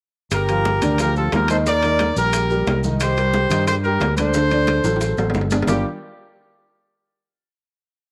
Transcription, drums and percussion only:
0.31 high bongo medium
0.31 high conga soft
0.31 high timbale medium
0.31 maracas medium
0.48 high conga soft
0.48 high timbale medium
0.48 maracas soft
0.65 high bongo medium
0.65 high conga medium
0.65 low timbale medium
0.65 maracas soft
0.82 high conga soft
0.82 low conga medium
0.82 high timbale medium
0.82 maracas medium
0.98 high bongo medium
0.98 high conga soft
0.98 high timbale medium
0.98 maracas medium
1.16 high conga soft
1.16 maracas soft
1.32 high bongo medium
1.32 low bongo medium
1.32 high conga medium
1.32 high timbale medium
1.32 low timbale medium
1.32 maracas soft
1.48 high conga medium
1.48 high timbale medium
1.48 maracas medium
1.66 high bongo medium
1.66 maracas medium
1.83 high bongo soft
1.83 high conga soft
1.83 high timbale medium
1.83 maracas soft
1.99 high bongo medium
1.99 high conga medium
1.99 high timbale medium
1.99 low timbale medium
1.99 maracas soft
2.16 high conga soft
2.16 maracas medium
2.33 high bongo medium
2.33 high conga soft
2.33 high timbale medium
2.33 maracas medium
2.50 high bongo soft
2.50 high conga soft
2.50 maracas soft
2.67 high bongo medium
2.67 low bongo medium
2.67 high conga medium
2.67 high timbale medium
2.67 low timbale medium
2.67 maracas soft
2.84 high bongo soft
2.84 high conga medium
2.84 maracas medium
3.00 high bongo medium
3.00 high conga soft
3.00 high timbale loud
3.00 maracas medium
3.17 high conga soft
3.17 high timbale medium
3.17 maracas soft
3.33 high bongo medium
3.33 high conga medium
3.33 low timbale medium
3.33 maracas soft
3.50 high conga soft
3.50 low conga medium
3.50 high timbale medium
3.50 maracas medium
3.67 high bongo medium
3.67 high conga soft
3.67 high timbale medium
3.67 maracas medium
3.84 high conga soft
3.84 maracas soft
4.00 high bongo medium
4.00 low bongo medium
4.00 high conga medium
4.00 high timbale medium
4.00 low timbale medium
4.00 maracas soft
4.17 high conga medium
4.17 high timbale medium
4.17 maracas medium
4.34 high bongo medium
4.34 maracas medium
4.51 high bongo soft
4.51 high conga soft
4.51 high timbale medium
4.51 maracas soft
4.67 high bongo medium
4.67 high conga medium
4.67 high timbale medium
4.67 low timbale medium
4.67 maracas soft
4.84 high conga soft
4.84 high timbale medium
4.84 maracas medium
4.96 high timbale medium
5.01 high bongo medium
5.01 high conga soft
5.01 maracas medium
5.17 high bongo soft
5.17 high conga soft
5.17 low timbale medium
5.17 maracas soft
5.30 low timbale medium
5.34 high bongo medium
5.34 low bongo medium
5.34 high conga medium
5.34 maracas soft
5.41 low timbale medium
5.51 high bongo soft
5.51 high conga medium
5.51 low timbale medium
5.51 maracas medium
5.62 low timbale loud
5.67 low bongo loud
5.67 low conga medium
5.67 low timbale loud
5.67 maracas medium

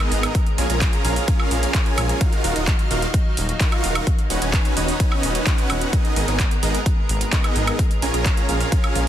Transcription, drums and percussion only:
0.00 closed hi-hat soft
0.00 high woodblock medium
0.12 open hi-hat loud
0.23 closed hi-hat medium
0.23 high woodblock medium
0.35 kick loud
0.35 closed hi-hat medium
0.47 closed hi-hat soft
0.58 open hi-hat loud
0.70 closed hi-hat soft
0.81 kick loud
0.81 clap loud
0.81 closed hi-hat medium
0.93 closed hi-hat soft
1.05 open hi-hat loud
1.16 open hi-hat medium
1.28 kick loud
1.28 closed hi-hat medium
1.40 high woodblock medium
1.51 open hi-hat loud
1.63 closed hi-hat soft
1.74 kick loud
1.74 clap loud
1.74 closed hi-hat medium
1.86 closed hi-hat soft
1.98 open hi-hat loud
1.98 high woodblock medium
2.09 closed hi-hat medium
2.21 kick loud
2.21 closed hi-hat medium
2.33 closed hi-hat soft
2.44 open hi-hat loud
2.56 closed hi-hat medium
2.67 kick loud
2.67 clap loud
2.67 closed hi-hat medium
2.79 closed hi-hat soft
2.91 open hi-hat loud
3.02 closed hi-hat medium
3.14 kick loud
3.14 closed hi-hat medium
3.37 open hi-hat loud
3.49 closed hi-hat soft
3.60 kick loud
3.60 clap loud
3.60 closed hi-hat medium
3.72 closed hi-hat soft
3.72 high woodblock medium
3.84 open hi-hat loud
3.95 closed hi-hat medium
3.95 high woodblock medium
4.07 kick loud
4.07 closed hi-hat medium
4.19 closed hi-hat soft
4.30 open hi-hat loud
4.42 closed hi-hat medium
4.53 kick loud
4.53 clap loud
4.53 closed hi-hat medium
4.65 closed hi-hat soft
4.77 open hi-hat loud
4.88 open hi-hat medium
5.00 kick loud
5.00 closed hi-hat medium
5.12 high woodblock medium
5.23 open hi-hat loud
5.35 closed hi-hat medium
5.46 kick loud
5.46 clap loud
5.46 closed hi-hat medium
5.58 closed hi-hat soft
5.70 open hi-hat loud
5.70 high woodblock medium
5.81 closed hi-hat medium
5.93 kick loud
5.93 closed hi-hat medium
6.05 closed hi-hat soft
6.16 open hi-hat loud
6.28 closed hi-hat medium
6.40 kick loud
6.40 clap loud
6.40 closed hi-hat medium
6.51 closed hi-hat soft
6.63 open hi-hat loud
6.75 closed hi-hat medium
6.86 kick loud
6.86 closed hi-hat medium
7.09 open hi-hat loud
7.21 closed hi-hat medium
7.33 kick loud
7.33 clap loud
7.33 closed hi-hat medium
7.44 closed hi-hat soft
7.44 high woodblock medium
7.56 open hi-hat loud
7.67 closed hi-hat medium
7.67 high woodblock medium
7.79 kick loud
7.79 closed hi-hat medium
7.91 closed hi-hat soft
8.02 open hi-hat loud
8.14 closed hi-hat medium
8.26 kick loud
8.26 clap loud
8.26 closed hi-hat medium
8.37 closed hi-hat soft
8.49 open hi-hat loud
8.60 open hi-hat medium
8.72 kick loud
8.72 closed hi-hat medium
8.84 closed hi-hat soft
8.84 high woodblock medium
8.95 open hi-hat loud

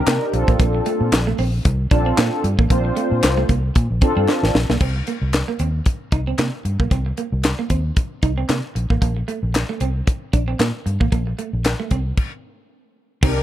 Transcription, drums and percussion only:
0.07 snare loud
0.07 clap medium
0.07 closed hi-hat medium
0.34 closed hi-hat medium
0.48 kick medium
0.48 closed hi-hat medium
0.59 kick loud
0.59 closed hi-hat medium
0.86 closed hi-hat medium
1.12 snare loud
1.12 clap medium
1.12 clap loud
1.12 closed hi-hat loud
1.38 open hi-hat medium
1.65 kick loud
1.65 closed hi-hat medium
1.91 kick loud
1.91 closed hi-hat medium
2.18 snare loud
2.18 clap medium
2.18 closed hi-hat loud
2.44 closed hi-hat medium
2.59 kick medium
2.70 kick loud
2.70 closed hi-hat medium
2.97 closed hi-hat medium
3.23 snare loud
3.23 clap loud
3.23 clap medium
3.23 closed hi-hat loud
3.49 kick medium
3.49 closed hi-hat medium
3.75 kick loud
3.75 closed hi-hat medium
4.01 kick loud
4.01 closed hi-hat medium
4.29 snare medium
4.29 clap medium
4.44 snare medium
4.55 snare loud
4.70 snare loud
4.81 kick loud
4.81 crash medium
5.07 closed hi-hat medium
5.33 snare medium
5.33 clap medium
5.33 closed hi-hat medium
5.59 closed hi-hat medium
5.86 kick loud
5.86 closed hi-hat medium
6.12 kick loud
6.12 closed hi-hat medium
6.38 snare loud
6.38 clap medium
6.38 closed hi-hat medium
6.65 closed hi-hat medium
6.80 kick medium
6.91 kick loud
6.91 closed hi-hat medium
7.17 closed hi-hat medium
7.43 snare loud
7.43 clap medium
7.43 clap loud
7.43 closed hi-hat medium
7.70 kick medium
7.70 closed hi-hat medium
7.96 kick loud
7.96 closed hi-hat medium
8.22 kick loud
8.22 closed hi-hat medium
8.49 snare loud
8.49 clap medium
8.49 closed hi-hat medium
8.76 closed hi-hat medium
8.90 kick medium
9.02 kick loud
9.02 closed hi-hat medium
9.28 closed hi-hat medium
9.55 snare loud
9.55 clap loud
9.55 clap medium
9.55 closed hi-hat medium
9.80 closed hi-hat medium
10.07 kick loud
10.07 closed hi-hat medium
10.33 kick medium
10.33 closed hi-hat medium
10.60 snare loud
10.60 clap medium
10.60 closed hi-hat medium
10.87 closed hi-hat medium
11.01 kick medium
11.12 kick loud
11.12 closed hi-hat medium
11.38 closed hi-hat medium
11.64 snare loud
11.64 clap medium
11.64 closed hi-hat loud
11.91 kick medium
11.91 closed hi-hat medium
12.17 kick medium
12.17 crash medium
13.23 kick loud
13.23 crash loud

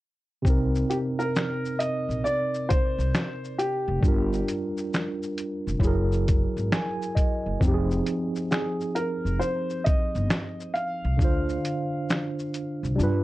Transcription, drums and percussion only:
0.45 kick loud
0.45 shaker medium
0.75 shaker soft
0.91 closed hi-hat medium
0.91 shaker medium
1.20 shaker soft
1.36 finger snap medium
1.36 snare medium
1.36 shaker medium
1.65 shaker soft
1.80 closed hi-hat medium
1.80 shaker soft
2.10 shaker soft
2.26 shaker soft
2.54 shaker soft
2.70 kick medium
2.70 closed hi-hat medium
2.70 shaker soft
3.00 shaker soft
3.15 finger snap medium
3.15 snare loud
3.15 shaker medium
3.45 shaker soft
3.59 closed hi-hat medium
3.59 shaker soft
4.03 kick loud
4.03 shaker medium
4.33 shaker soft
4.49 closed hi-hat medium
4.49 shaker soft
4.77 shaker soft
4.94 finger snap medium
4.94 snare medium
4.94 shaker medium
5.23 shaker soft
5.38 closed hi-hat medium
5.38 shaker soft
5.68 shaker soft
5.80 kick medium
5.80 shaker medium
6.12 shaker soft
6.28 kick medium
6.28 closed hi-hat medium
6.28 shaker soft
6.57 shaker soft
6.72 finger snap medium
6.72 snare loud
6.72 shaker medium
7.02 shaker soft
7.17 kick medium
7.17 closed hi-hat medium
7.17 shaker soft
7.61 kick loud
7.61 shaker medium
7.91 shaker soft
8.06 closed hi-hat medium
8.06 shaker soft
8.35 shaker soft
8.51 finger snap medium
8.51 snare medium
8.51 shaker medium
8.80 shaker soft
8.96 closed hi-hat medium
8.96 shaker soft
9.26 shaker soft
9.41 shaker medium
9.70 shaker soft
9.86 kick medium
9.86 closed hi-hat medium
9.86 shaker soft
10.15 shaker soft
10.30 finger snap medium
10.30 snare loud
10.30 shaker medium
10.60 shaker soft
10.75 closed hi-hat medium
10.75 shaker soft
11.19 kick loud
11.19 shaker medium
11.49 shaker soft
11.65 closed hi-hat medium
11.65 shaker soft
12.10 finger snap medium
12.10 snare medium
12.10 shaker medium
12.39 shaker soft
12.54 closed hi-hat medium
12.54 shaker soft
12.85 shaker soft
13.00 shaker soft

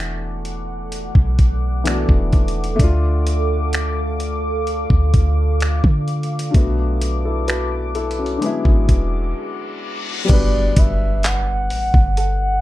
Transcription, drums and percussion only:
0.00 finger snap loud
0.45 closed hi-hat medium
0.92 closed hi-hat medium
1.15 kick medium
1.39 kick medium
1.39 closed hi-hat medium
1.85 finger snap loud
1.85 closed hi-hat medium
2.09 kick loud
2.33 kick medium
2.33 closed hi-hat soft
2.48 closed hi-hat medium
2.64 closed hi-hat medium
2.79 kick loud
2.79 closed hi-hat medium
3.27 closed hi-hat medium
3.73 finger snap loud
3.73 closed hi-hat medium
4.20 closed hi-hat medium
4.67 closed hi-hat medium
4.90 kick medium
5.14 kick medium
5.14 closed hi-hat medium
5.60 finger snap loud
5.60 closed hi-hat medium
5.84 kick loud
6.08 closed hi-hat soft
6.23 closed hi-hat medium
6.39 closed hi-hat medium
6.54 kick loud
6.54 closed hi-hat medium
7.01 closed hi-hat medium
7.48 finger snap loud
7.48 closed hi-hat medium
7.95 closed hi-hat medium
8.11 closed hi-hat soft
8.26 closed hi-hat soft
8.42 closed hi-hat medium
8.65 kick medium
8.89 kick medium
8.89 closed hi-hat medium
10.29 kick loud
10.29 closed hi-hat medium
10.29 crash loud
10.76 kick loud
10.76 closed hi-hat medium
11.23 clap loud
11.23 closed hi-hat medium
11.70 open hi-hat soft
11.94 kick medium
12.17 closed hi-hat medium

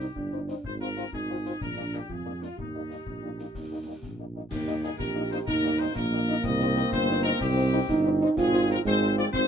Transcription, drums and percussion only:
0.00 snare soft
0.16 concert bass drum medium
0.48 snare soft
0.64 concert bass drum medium
0.96 snare soft
1.13 concert bass drum medium
1.45 snare soft
1.61 concert bass drum medium
1.93 snare soft
2.10 concert bass drum medium
2.42 snare soft
2.58 concert bass drum medium
2.91 snare soft
3.06 concert bass drum medium
3.39 snare soft
3.55 concert bass drum medium
3.55 snare soft
4.03 concert bass drum medium
4.03 snare soft
4.51 concert bass drum medium
4.51 snare medium
4.51 crash soft
4.67 snare medium
4.84 snare medium
4.99 concert bass drum medium
4.99 snare medium
5.31 snare medium
5.47 concert bass drum medium
5.47 snare medium
5.96 concert bass drum medium
5.96 snare medium
6.44 concert bass drum medium
6.44 snare medium
6.60 snare medium
6.76 snare medium
6.92 concert bass drum medium
6.92 snare medium
7.24 snare medium
7.41 concert bass drum medium
7.41 snare medium
7.89 concert bass drum medium
7.89 snare medium
8.37 concert bass drum medium
8.37 snare medium
8.37 crash soft
8.53 snare medium
8.69 snare medium
8.85 concert bass drum medium
8.85 snare medium
9.18 snare medium
9.33 concert bass drum medium
9.33 snare medium

